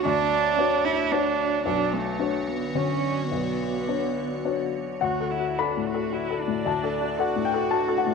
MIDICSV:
0, 0, Header, 1, 4, 480
1, 0, Start_track
1, 0, Tempo, 538600
1, 43, Time_signature, 3, 2, 24, 8
1, 2444, Tempo, 569260
1, 4844, Tempo, 531915
1, 7148, End_track
2, 0, Start_track
2, 0, Title_t, "Ambient pad"
2, 0, Program_c, 0, 92
2, 0, Note_on_c, 0, 62, 58
2, 0, Note_on_c, 0, 66, 58
2, 0, Note_on_c, 0, 73, 54
2, 1438, Note_off_c, 0, 62, 0
2, 1463, Note_off_c, 0, 66, 0
2, 1465, Note_off_c, 0, 73, 0
2, 1473, Note_on_c, 0, 66, 55
2, 1475, Note_on_c, 0, 73, 55
2, 1476, Note_on_c, 0, 50, 58
2, 4329, Note_off_c, 0, 66, 0
2, 4330, Note_off_c, 0, 50, 0
2, 4330, Note_off_c, 0, 73, 0
2, 4356, Note_on_c, 0, 62, 52
2, 4359, Note_on_c, 0, 66, 52
2, 4361, Note_on_c, 0, 74, 56
2, 7148, Note_off_c, 0, 62, 0
2, 7148, Note_off_c, 0, 66, 0
2, 7148, Note_off_c, 0, 74, 0
2, 7148, End_track
3, 0, Start_track
3, 0, Title_t, "Upright piano"
3, 0, Program_c, 1, 0
3, 0, Control_c, 1, 64, 127
3, 47, Note_on_c, 1, 38, 55
3, 58, Control_c, 1, 64, 0
3, 183, Control_c, 1, 64, 127
3, 501, Note_off_c, 1, 38, 0
3, 516, Note_on_c, 1, 62, 42
3, 523, Note_on_c, 1, 66, 42
3, 525, Note_on_c, 1, 73, 44
3, 954, Note_off_c, 1, 62, 0
3, 957, Note_off_c, 1, 66, 0
3, 958, Note_off_c, 1, 73, 0
3, 994, Note_on_c, 1, 62, 41
3, 999, Note_on_c, 1, 66, 43
3, 1004, Note_on_c, 1, 73, 44
3, 1435, Note_off_c, 1, 62, 0
3, 1437, Note_off_c, 1, 66, 0
3, 1439, Note_off_c, 1, 73, 0
3, 1476, Note_on_c, 1, 35, 50
3, 1485, Control_c, 1, 64, 0
3, 1614, Control_c, 1, 64, 127
3, 1943, Note_off_c, 1, 35, 0
3, 1954, Note_on_c, 1, 62, 35
3, 1961, Note_on_c, 1, 66, 34
3, 1964, Note_on_c, 1, 73, 37
3, 2408, Note_off_c, 1, 62, 0
3, 2411, Note_off_c, 1, 66, 0
3, 2413, Note_off_c, 1, 73, 0
3, 2447, Note_on_c, 1, 50, 31
3, 2451, Note_on_c, 1, 66, 32
3, 2455, Note_on_c, 1, 73, 35
3, 2887, Note_off_c, 1, 50, 0
3, 2889, Note_off_c, 1, 66, 0
3, 2891, Note_off_c, 1, 73, 0
3, 2929, Note_on_c, 1, 35, 37
3, 2934, Control_c, 1, 64, 0
3, 3070, Control_c, 1, 64, 127
3, 3389, Note_off_c, 1, 35, 0
3, 3405, Note_on_c, 1, 62, 26
3, 3410, Note_on_c, 1, 66, 27
3, 3411, Note_on_c, 1, 73, 30
3, 3849, Note_off_c, 1, 62, 0
3, 3851, Note_off_c, 1, 66, 0
3, 3852, Note_off_c, 1, 73, 0
3, 3884, Note_on_c, 1, 62, 26
3, 3887, Note_on_c, 1, 66, 26
3, 3889, Note_on_c, 1, 73, 30
3, 4328, Note_off_c, 1, 62, 0
3, 4330, Note_off_c, 1, 66, 0
3, 4331, Note_off_c, 1, 73, 0
3, 4355, Note_on_c, 1, 78, 59
3, 4363, Note_on_c, 1, 38, 41
3, 4377, Control_c, 1, 64, 0
3, 4498, Control_c, 1, 64, 127
3, 4519, Note_on_c, 1, 69, 36
3, 4681, Note_on_c, 1, 66, 33
3, 4779, Note_off_c, 1, 69, 0
3, 4806, Note_off_c, 1, 78, 0
3, 4842, Note_on_c, 1, 69, 37
3, 4843, Note_on_c, 1, 83, 66
3, 4941, Note_off_c, 1, 66, 0
3, 5008, Note_on_c, 1, 45, 32
3, 5104, Note_off_c, 1, 69, 0
3, 5164, Note_on_c, 1, 69, 36
3, 5265, Note_off_c, 1, 45, 0
3, 5327, Note_on_c, 1, 66, 37
3, 5423, Note_off_c, 1, 69, 0
3, 5491, Note_on_c, 1, 69, 35
3, 5586, Note_off_c, 1, 66, 0
3, 5646, Note_on_c, 1, 45, 36
3, 5748, Note_off_c, 1, 69, 0
3, 5777, Note_off_c, 1, 83, 0
3, 5778, Note_off_c, 1, 38, 0
3, 5807, Note_on_c, 1, 38, 46
3, 5821, Note_on_c, 1, 81, 52
3, 5830, Control_c, 1, 64, 0
3, 5906, Note_off_c, 1, 45, 0
3, 5953, Control_c, 1, 64, 127
3, 5971, Note_on_c, 1, 69, 39
3, 6131, Note_on_c, 1, 66, 36
3, 6228, Note_off_c, 1, 69, 0
3, 6264, Note_off_c, 1, 81, 0
3, 6291, Note_on_c, 1, 69, 41
3, 6298, Note_on_c, 1, 78, 64
3, 6387, Note_off_c, 1, 66, 0
3, 6443, Note_on_c, 1, 45, 38
3, 6518, Note_off_c, 1, 78, 0
3, 6524, Note_on_c, 1, 79, 66
3, 6547, Note_off_c, 1, 69, 0
3, 6604, Note_on_c, 1, 69, 44
3, 6701, Note_off_c, 1, 45, 0
3, 6748, Note_off_c, 1, 79, 0
3, 6756, Note_on_c, 1, 81, 69
3, 6764, Note_on_c, 1, 66, 45
3, 6859, Note_off_c, 1, 69, 0
3, 6915, Note_on_c, 1, 69, 48
3, 6982, Note_off_c, 1, 81, 0
3, 6999, Note_on_c, 1, 78, 67
3, 7018, Note_off_c, 1, 66, 0
3, 7078, Note_on_c, 1, 45, 42
3, 7148, Note_off_c, 1, 38, 0
3, 7148, Note_off_c, 1, 45, 0
3, 7148, Note_off_c, 1, 69, 0
3, 7148, Note_off_c, 1, 78, 0
3, 7148, End_track
4, 0, Start_track
4, 0, Title_t, "Cello"
4, 0, Program_c, 2, 42
4, 54, Note_on_c, 2, 62, 95
4, 759, Note_on_c, 2, 64, 77
4, 772, Note_off_c, 2, 62, 0
4, 1000, Note_on_c, 2, 62, 75
4, 1014, Note_off_c, 2, 64, 0
4, 1473, Note_off_c, 2, 62, 0
4, 1483, Note_on_c, 2, 62, 72
4, 1726, Note_on_c, 2, 57, 60
4, 1739, Note_off_c, 2, 62, 0
4, 2206, Note_on_c, 2, 59, 51
4, 2219, Note_off_c, 2, 57, 0
4, 2460, Note_on_c, 2, 61, 61
4, 2472, Note_off_c, 2, 59, 0
4, 2925, Note_off_c, 2, 61, 0
4, 2930, Note_on_c, 2, 59, 57
4, 4102, Note_off_c, 2, 59, 0
4, 4363, Note_on_c, 2, 66, 50
4, 4610, Note_on_c, 2, 64, 43
4, 4622, Note_off_c, 2, 66, 0
4, 4857, Note_on_c, 2, 62, 43
4, 4870, Note_off_c, 2, 64, 0
4, 5103, Note_on_c, 2, 66, 46
4, 5117, Note_off_c, 2, 62, 0
4, 5332, Note_on_c, 2, 64, 42
4, 5345, Note_off_c, 2, 66, 0
4, 5589, Note_on_c, 2, 62, 50
4, 5603, Note_off_c, 2, 64, 0
4, 6293, Note_on_c, 2, 66, 63
4, 6306, Note_off_c, 2, 62, 0
4, 7148, Note_off_c, 2, 66, 0
4, 7148, End_track
0, 0, End_of_file